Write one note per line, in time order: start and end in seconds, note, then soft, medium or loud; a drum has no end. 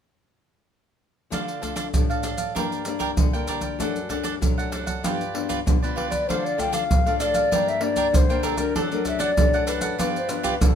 1.30 1.90 D3 medium
1.30 1.57 F3 soft
1.30 1.57 A3 medium
1.30 1.58 D4 medium
1.30 1.61 D4 medium
1.30 1.61 A4 medium
1.30 1.62 D5 medium
1.30 1.62 F5 medium
1.30 pandeiro medium
1.30 maracas medium
1.30 surdo soft
1.48 pandeiro soft
1.48 maracas soft
1.61 1.88 F3 soft
1.61 1.88 A3 soft
1.61 1.74 D4 soft
1.61 1.88 D4 soft
1.61 1.75 A4 soft
1.61 1.75 D5 soft
1.61 1.75 F5 soft
1.61 pandeiro medium
1.61 maracas medium
1.61 surdo soft
1.76 1.86 D4 medium
1.76 1.86 A4 medium
1.76 1.86 D5 medium
1.76 1.86 F5 medium
1.76 pandeiro medium
1.76 maracas medium
1.94 2.53 A2 medium
1.94 2.34 F3 soft
1.94 2.34 A3 soft
1.94 2.34 D4 medium
1.94 pandeiro medium
1.94 maracas medium
1.94 surdo medium
2.10 2.23 A4 soft
2.10 2.24 D5 soft
2.10 2.24 F5 soft
2.10 pandeiro soft
2.10 maracas soft
2.23 2.38 D4 medium
2.23 2.38 A4 medium
2.23 2.37 D5 medium
2.23 2.36 F5 medium
2.23 pandeiro medium
2.23 maracas medium
2.37 2.54 A4 soft
2.37 2.53 D5 soft
2.37 2.53 F5 medium
2.37 pandeiro soft
2.37 maracas medium
2.37 surdo soft
2.55 3.14 G2 medium
2.55 2.82 G3 medium
2.55 2.82 A#3 soft
2.55 2.98 D4 medium
2.55 2.82 D4 medium
2.55 2.98 A#4 medium
2.55 2.99 D5 medium
2.55 2.99 G5 medium
2.55 pandeiro medium
2.55 maracas medium
2.55 surdo medium
2.72 pandeiro soft
2.72 maracas soft
2.85 3.28 G3 medium
2.85 3.28 A#3 soft
2.85 3.29 D4 medium
2.85 pandeiro medium
2.85 maracas medium
2.99 3.10 D4 medium
2.99 3.10 A#4 medium
2.99 3.10 D5 medium
2.99 3.10 G5 medium
2.99 pandeiro soft
2.99 maracas medium
2.99 surdo soft
3.17 3.77 D3 medium
3.17 pandeiro medium
3.17 maracas medium
3.17 surdo loud
3.33 3.75 G3 soft
3.33 3.75 A#3 medium
3.33 3.75 D4 medium
3.33 3.47 A#4 soft
3.33 3.47 D5 soft
3.33 3.48 G5 soft
3.33 pandeiro soft
3.33 maracas soft
3.48 3.62 D4 medium
3.48 3.62 A#4 medium
3.48 3.62 D5 medium
3.48 3.61 G5 medium
3.48 pandeiro medium
3.48 maracas medium
3.48 surdo soft
3.61 3.78 A#4 soft
3.61 3.78 D5 soft
3.61 3.77 G5 soft
3.61 pandeiro medium
3.61 maracas medium
3.61 surdo soft
3.79 4.38 F#2 medium
3.79 3.97 F#3 medium
3.79 3.98 A3 medium
3.79 4.08 D4 medium
3.79 3.98 D4 medium
3.79 4.09 A4 medium
3.79 4.09 D5 medium
3.79 4.10 F#5 medium
3.79 pandeiro medium
3.79 maracas medium
3.79 surdo medium
3.96 pandeiro soft
3.96 maracas soft
4.09 4.36 F#3 medium
4.09 4.36 A3 soft
4.09 4.22 D4 soft
4.09 4.36 D4 medium
4.09 4.22 A4 soft
4.09 4.23 D5 soft
4.09 4.23 F#5 soft
4.09 pandeiro medium
4.09 maracas medium
4.09 surdo soft
4.23 4.34 D4 medium
4.23 4.34 A4 medium
4.23 4.34 D5 medium
4.23 4.34 F#5 medium
4.23 pandeiro medium
4.23 maracas medium
4.41 5.00 F#2 medium
4.41 4.82 F#3 medium
4.41 4.81 A3 soft
4.41 4.82 D4 medium
4.41 pandeiro medium
4.41 maracas medium
4.41 surdo medium
4.58 4.71 A4 soft
4.58 4.72 D5 soft
4.58 4.72 F#5 soft
4.58 pandeiro soft
4.58 maracas soft
4.72 4.87 D4 medium
4.72 4.87 A4 medium
4.72 4.86 D5 medium
4.72 4.85 F#5 medium
4.72 pandeiro medium
4.72 maracas medium
4.86 5.03 A4 soft
4.86 5.02 D5 soft
4.86 5.02 F#5 soft
4.86 pandeiro medium
4.86 maracas medium
4.86 surdo soft
5.03 5.62 G2 medium
5.03 5.22 F3 medium
5.03 5.22 B3 medium
5.03 5.22 D4 soft
5.03 5.48 F4 medium
5.03 5.48 G4 medium
5.03 5.48 B4 medium
5.03 5.49 D5 medium
5.03 pandeiro medium
5.03 maracas medium
5.03 surdo medium
5.21 pandeiro soft
5.21 maracas soft
5.34 5.60 F3 medium
5.34 5.60 B3 medium
5.34 5.61 D4 medium
5.34 pandeiro medium
5.49 5.59 F4 medium
5.49 5.59 G4 medium
5.49 5.59 B4 medium
5.49 5.59 D5 medium
5.49 pandeiro soft
5.49 maracas medium
5.49 surdo soft
5.66 6.25 D3 medium
5.66 5.76 F3 medium
5.66 5.77 B3 soft
5.66 5.77 D4 medium
5.66 pandeiro medium
5.66 maracas medium
5.66 surdo medium
5.83 6.24 F3 medium
5.83 6.24 B3 medium
5.83 6.24 D4 medium
5.83 5.95 G4 soft
5.83 5.96 B4 soft
5.83 5.96 D5 soft
5.83 pandeiro soft
5.83 maracas soft
5.96 6.11 F4 medium
5.96 6.11 G4 medium
5.96 6.10 B4 medium
5.96 6.09 D5 medium
5.96 pandeiro medium
5.96 surdo soft
6.10 6.26 G4 soft
6.10 6.26 B4 soft
6.10 6.26 D5 soft
6.10 6.29 D5 medium
6.10 pandeiro medium
6.10 maracas medium
6.10 surdo soft
6.27 6.87 D3 medium
6.27 6.54 F3 medium
6.27 6.55 A3 medium
6.27 6.57 D4 medium
6.27 6.55 D4 medium
6.27 6.57 A4 medium
6.27 6.46 C5 medium
6.27 6.58 D5 medium
6.27 6.59 F5 medium
6.27 pandeiro medium
6.27 maracas medium
6.27 surdo soft
6.45 6.61 D5 medium
6.45 pandeiro soft
6.45 maracas soft
6.58 6.87 F3 medium
6.58 6.87 A3 medium
6.58 6.71 D4 soft
6.58 6.88 D4 medium
6.58 6.71 A4 soft
6.58 6.71 D5 soft
6.58 6.72 F5 medium
6.58 6.75 G5 loud
6.58 pandeiro medium
6.58 maracas medium
6.58 surdo soft
6.72 6.82 D4 medium
6.72 6.82 A4 medium
6.72 6.83 D5 medium
6.72 6.83 F5 medium
6.72 7.22 F5 medium
6.72 pandeiro medium
6.72 maracas medium
6.89 7.48 A2 medium
6.89 pandeiro medium
6.89 maracas medium
6.89 surdo loud
7.06 7.47 F3 medium
7.06 7.47 A3 medium
7.06 7.47 D4 medium
7.06 7.19 A4 soft
7.06 7.20 D5 soft
7.06 7.20 F5 soft
7.06 pandeiro soft
7.06 maracas soft
7.20 7.35 D4 medium
7.20 7.35 A4 medium
7.20 7.70 D5 medium
7.20 7.35 D5 medium
7.20 7.34 F5 medium
7.20 pandeiro medium
7.20 maracas medium
7.34 7.50 A4 soft
7.34 7.50 D5 soft
7.34 7.50 F5 medium
7.34 pandeiro medium
7.34 maracas medium
7.34 surdo soft
7.51 8.10 G2 medium
7.51 7.78 G3 medium
7.51 7.78 A#3 medium
7.51 7.95 D4 medium
7.51 7.78 D4 medium
7.51 7.96 A#4 medium
7.51 7.96 D5 medium
7.51 7.96 G5 medium
7.51 pandeiro medium
7.51 maracas medium
7.51 surdo medium
7.68 7.85 E5 medium
7.68 pandeiro soft
7.68 maracas soft
7.80 8.23 G3 medium
7.80 8.23 A#3 medium
7.80 8.23 D4 medium
7.80 8.17 D5 medium
7.80 pandeiro medium
7.96 8.06 D4 medium
7.96 8.07 A#4 medium
7.96 8.07 D5 medium
7.96 8.07 G5 medium
7.96 pandeiro soft
7.96 maracas medium
7.96 surdo soft
8.12 8.72 D3 medium
8.12 8.47 C5 medium
8.12 pandeiro medium
8.12 maracas medium
8.12 surdo loud
8.29 8.55 G3 soft
8.29 8.55 A#3 medium
8.29 8.56 D4 medium
8.29 8.42 A#4 soft
8.29 8.43 D5 soft
8.29 8.43 G5 soft
8.29 pandeiro soft
8.29 maracas soft
8.43 8.58 D4 medium
8.43 8.59 A4 medium
8.43 8.58 A#4 medium
8.43 8.57 D5 medium
8.43 8.56 G5 medium
8.43 pandeiro medium
8.43 maracas medium
8.43 surdo soft
8.57 8.90 F#3 medium
8.57 8.91 A3 medium
8.57 8.91 D4 medium
8.57 8.74 A#4 soft
8.57 8.74 A#4 medium
8.57 8.73 D5 soft
8.57 8.73 G5 soft
8.57 pandeiro medium
8.57 maracas medium
8.57 surdo soft
8.75 9.34 F#2 medium
8.75 9.04 D4 medium
8.75 9.05 A4 medium
8.75 8.91 A4 medium
8.75 9.05 D5 medium
8.75 9.06 F#5 medium
8.75 pandeiro medium
8.75 maracas medium
8.75 surdo medium
8.91 9.33 F#3 medium
8.91 9.33 A3 medium
8.91 9.33 D4 medium
8.91 9.06 A#4 medium
8.91 pandeiro soft
8.91 maracas soft
9.05 9.18 D4 soft
9.05 9.18 A4 soft
9.05 9.18 D5 medium
9.05 9.21 E5 medium
9.05 9.19 F#5 soft
9.05 pandeiro medium
9.05 maracas medium
9.05 surdo soft
9.19 9.30 D4 medium
9.19 9.30 A4 medium
9.19 9.30 D5 medium
9.19 9.67 D5 medium
9.19 9.30 F#5 medium
9.19 pandeiro medium
9.19 maracas medium
9.37 9.96 F#2 medium
9.37 9.95 F#3 medium
9.37 9.95 A3 medium
9.37 9.95 D4 medium
9.37 pandeiro medium
9.37 maracas medium
9.37 surdo loud
9.54 9.66 A4 soft
9.54 9.66 D5 soft
9.54 9.67 F#5 soft
9.54 pandeiro soft
9.54 maracas soft
9.67 9.82 D4 medium
9.67 9.82 A4 medium
9.67 10.11 B4 medium
9.67 9.82 D5 medium
9.67 9.81 F#5 medium
9.67 pandeiro medium
9.67 maracas medium
9.81 9.98 A4 soft
9.81 9.98 D5 soft
9.81 9.97 F#5 soft
9.81 pandeiro medium
9.81 maracas medium
9.81 surdo soft
9.98 10.58 G2 medium
9.98 10.17 F3 medium
9.98 10.17 B3 medium
9.98 10.18 D4 medium
9.98 10.42 F4 medium
9.98 10.43 G4 medium
9.98 10.43 B4 medium
9.98 10.43 D5 medium
9.98 pandeiro medium
9.98 maracas medium
9.98 surdo medium
10.16 10.32 C5 medium
10.16 pandeiro soft
10.16 maracas soft
10.29 10.56 F3 medium
10.29 10.56 B3 medium
10.29 10.56 D4 medium
10.29 10.63 B4 medium
10.29 pandeiro medium
10.29 maracas medium
10.43 10.54 F4 medium
10.43 10.54 G4 medium
10.43 10.54 B4 medium
10.43 10.54 D5 medium
10.43 pandeiro medium
10.43 maracas medium
10.43 surdo soft
10.60 10.75 D3 medium
10.60 10.70 F3 medium
10.60 10.71 B3 medium
10.60 10.71 D4 medium
10.60 10.75 A4 medium
10.60 pandeiro medium
10.60 maracas medium
10.60 surdo loud